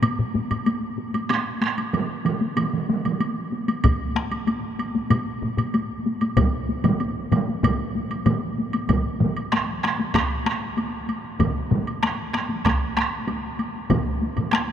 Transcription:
0.02 taiko low-mid, taiko high, high woodblock
0.19 taiko low-mid
0.34 taiko low-mid, taiko high
0.51 taiko low-mid, taiko high, high woodblock
0.66 taiko high, high woodblock
0.98 taiko high
1.14 taiko high, high woodblock
1.30 taiko rim, taiko high, high woodblock
1.62 taiko rim, taiko high
1.78 taiko high, high woodblock
1.93 taiko mid, taiko high, high woodblock
2.25 taiko mid, taiko high, high woodblock
2.41 taiko high
2.57 taiko mid, taiko high, high woodblock
2.73 taiko mid
2.89 taiko mid, taiko high
3.05 taiko mid, taiko high, high woodblock
3.20 taiko high, high woodblock
3.52 taiko high
3.68 taiko high, high woodblock
3.84 taiko, taiko low-mid, taiko high, high woodblock
4.15 taiko rim, taiko high
4.31 taiko high, high woodblock
4.47 taiko high, high woodblock
4.79 taiko high, high woodblock
4.95 taiko high
5.10 taiko low-mid, taiko high, high woodblock
5.42 taiko low-mid, taiko high
5.58 taiko low-mid, taiko high, high woodblock
5.74 taiko high, high woodblock
6.06 taiko high
6.21 taiko high, high woodblock
6.37 taiko, taiko low-mid, taiko mid, taiko high, high woodblock
6.69 taiko high
6.84 taiko low-mid, taiko mid, taiko high, high woodblock
7.00 taiko high, high woodblock
7.32 taiko low-mid, taiko mid, taiko high, high woodblock
7.48 taiko high
7.63 taiko, taiko low-mid, taiko mid, taiko high, high woodblock
7.95 taiko high
8.10 taiko high, high woodblock
8.26 taiko low-mid, taiko mid, taiko high, high woodblock
8.58 taiko high
8.73 taiko high, high woodblock
8.89 taiko, taiko low-mid, taiko mid, taiko high, high woodblock
9.05 taiko high
9.20 taiko low-mid, taiko mid, taiko high
9.37 taiko high, high woodblock
9.52 taiko rim, taiko high, high woodblock
9.84 taiko rim, taiko high, high woodblock
9.99 taiko high
10.14 taiko rim, taiko, taiko high, high woodblock
10.31 taiko high
10.46 taiko rim, taiko high
10.62 taiko high
10.77 taiko high, high woodblock
10.93 taiko high
11.08 taiko high, high woodblock
11.24 taiko high
11.39 taiko, taiko low-mid, taiko mid, taiko high, high woodblock
11.55 taiko high
11.71 taiko low-mid, taiko mid, taiko high
11.87 taiko high, high woodblock
12.03 taiko rim, taiko high, high woodblock
12.18 taiko high
12.33 taiko rim, taiko high, high woodblock
12.50 taiko high
12.65 taiko rim, taiko, taiko high, high woodblock
12.81 taiko high
12.97 taiko rim, taiko high
13.12 taiko high
13.28 taiko high, high woodblock
13.44 taiko high
13.59 taiko high, high woodblock
13.75 taiko high
13.90 taiko, taiko low-mid, taiko mid, taiko high, high woodblock
14.06 taiko high
14.21 taiko high
14.36 taiko low-mid, taiko mid, taiko high, high woodblock
14.51 taiko rim, taiko high, high woodblock
14.53 taiko rim
14.68 taiko high

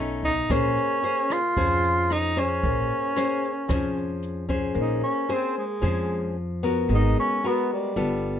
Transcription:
Already playing: B1 B2 A3 C#4 D#4
0.23 D#4, kick, closed hi-hat
0.49 A#1 A#3 C#4 G#4 C5, kick, cross-stick, closed hi-hat
0.77 closed hi-hat
1.03 C#4 G#4 C5, closed hi-hat
1.30 F4, cross-stick, closed hi-hat
1.56 F2 F3 C#4 G#4 C5, kick, closed hi-hat
1.84 closed hi-hat
2.10 D#4, cross-stick, closed hi-hat
2.36 C#4 G#4 C5, closed hi-hat
2.63 A#1 A#3, kick, closed hi-hat
2.90 closed hi-hat
3.16 C#4 G#4 C5, cross-stick, closed hi-hat
3.43 closed hi-hat
3.68 F2 F3 C#4 G#4 C5, kick, cross-stick, closed hi-hat
3.96 closed hi-hat
4.22 closed hi-hat
4.49 C#4 G#4 C5, kick, closed hi-hat
4.74 A#1 A#3
4.81 D#4
5.03 C#4
5.29 C#4 G#4 C5
5.34 C4
5.58 G#3
5.81 F2 F3 C#4 G#4 C5
6.63 B3 F#4 A#4
6.89 G#1 G#3
6.95 D#4
7.20 C#4
7.44 B3 F#4 A#4
7.73 G3
7.96 G1 G3 B3 F4 A4

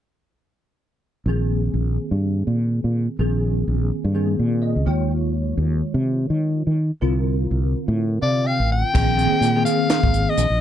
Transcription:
1.26 A#1 D#3 A#3 C4 G#4
1.74 A#1
2.11 G2
2.47 A#2
2.84 A#2
3.19 A#1 D#3 A#3 C4 G#4
3.68 A#1
4.04 G2
4.14 D#3 A#3 C4 G#4
4.39 A#2
4.62 D#5
4.76 C#2
4.86 D#2 D#3 G#3 F4 C#5 G5
5.57 D#2
5.94 C3
6.30 D#3
6.67 D#3
7.01 C2 D3 C4 F4 A#4
7.51 C2
7.88 A2
8.22 C3 D5 F5
8.45 F5 G5
8.60 A1
8.72 G5
8.94 A#1 D#3 A#3 C4 G#4, kick, crash
9.16 D#3 A#3 C4 G#4, closed hi-hat
9.41 A#2, closed hi-hat
9.55 D#3 A#3 C4 G#4
9.65 F5, closed hi-hat
9.90 snare, closed hi-hat
10.03 G#1, kick
10.14 closed hi-hat
10.29 D#5
10.37 A#1, closed hi-hat
10.50 A#1

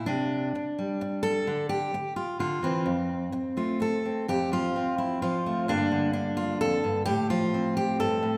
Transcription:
0.06 C3 D4
0.55 muted steel-string acoustic guitar stroke
0.79 G3
1.01 muted steel-string acoustic guitar stroke
1.23 A4
1.47 D3
1.69 G4
1.94 muted steel-string acoustic guitar stroke
2.16 F4
2.39 D3 F4
2.63 E3 C4
2.86 F2
3.32 muted steel-string acoustic guitar stroke
3.57 A3 F4
3.80 A4, muted steel-string acoustic guitar stroke
4.05 C4
4.28 F2 G4
4.52 F3 F4
4.76 C4
4.98 E4
5.22 F3 F4
5.46 A3
5.68 G2 D3 A#3 D4
5.92 D3
6.13 D4
6.37 F4
6.61 F2 A4
6.84 G2
7.06 A2 G4
7.30 F3 F4
7.54 C4
7.77 G4
7.99 G2 A4
8.23 A2

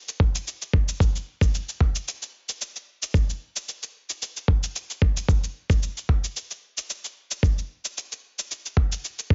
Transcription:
0.08 shaker
0.20 kick
0.35 shaker
0.48 shaker
0.62 shaker
0.73 kick
0.89 shaker
1.00 kick, shaker
1.16 shaker
1.41 kick, shaker
1.54 shaker
1.69 shaker
1.80 kick
1.95 shaker
2.08 shaker
2.22 shaker
2.49 shaker
2.61 shaker
2.76 shaker
3.03 shaker
3.14 kick, shaker
3.30 shaker
3.56 shaker
3.69 shaker
3.83 shaker
4.10 shaker
4.22 shaker
4.37 shaker
4.48 kick
4.63 shaker
4.76 shaker
4.90 shaker
5.02 kick
5.17 shaker
5.29 kick, shaker
5.44 shaker
5.70 kick, shaker
5.83 shaker
5.97 shaker
6.09 kick
6.24 shaker
6.37 shaker
6.51 shaker
6.78 shaker
6.90 shaker
7.04 shaker
7.31 shaker
7.43 kick, shaker
7.58 shaker
7.85 shaker
7.98 shaker
8.12 shaker
8.39 shaker
8.51 shaker
8.66 shaker
8.77 kick
8.92 shaker
9.05 shaker
9.19 shaker
9.30 kick

